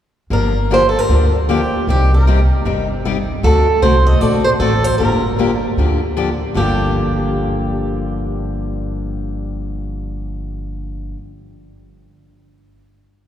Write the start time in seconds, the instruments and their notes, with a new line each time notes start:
0.30 upright bass G1, steel-string acoustic guitar D3 F3 A#3 D4 G4 A#4
0.71 steel-string acoustic guitar D3 F3 A#3 D4 G4 C5
0.89 steel-string acoustic guitar A4
0.99 steel-string acoustic guitar A#4
1.09 upright bass D2, steel-string acoustic guitar D3 F3 A#3 D4 G4
1.49 steel-string acoustic guitar D3 F3 A#3 D4 G4
1.87 upright bass C2, steel-string acoustic guitar C3 G3 C4 D#4 G4
2.14 steel-string acoustic guitar A#4
2.27 steel-string acoustic guitar C3 G3 C4 D#4 G4
2.65 upright bass G1, steel-string acoustic guitar C3 G3 C4 D#4 G4
3.05 steel-string acoustic guitar C3 G3 C4 D#4 G4
3.43 upright bass D2, steel-string acoustic guitar D3 A3 C4 F#4 A4
3.82 upright bass C2, steel-string acoustic guitar D3 A3 C4 F#4 A4 C5
4.07 steel-string acoustic guitar D#5
4.21 upright bass A#1, steel-string acoustic guitar D3 A3 C4 F#4 A4 D5
4.45 steel-string acoustic guitar C5
4.60 upright bass A1, steel-string acoustic guitar D3 A3 C4 F#4 A4
4.84 steel-string acoustic guitar C5
4.98 upright bass G1, steel-string acoustic guitar D3 F3 A#3 D4 G4 A#4
5.38 steel-string acoustic guitar D3 F3 A#3 D4 G4
5.77 upright bass D2, steel-string acoustic guitar D3 F3 A#3 D4 G4
6.17 steel-string acoustic guitar D3 F3 A#3 D4 G4
6.54 upright bass G1, steel-string acoustic guitar G2 D3 F3 A#3 D4 G4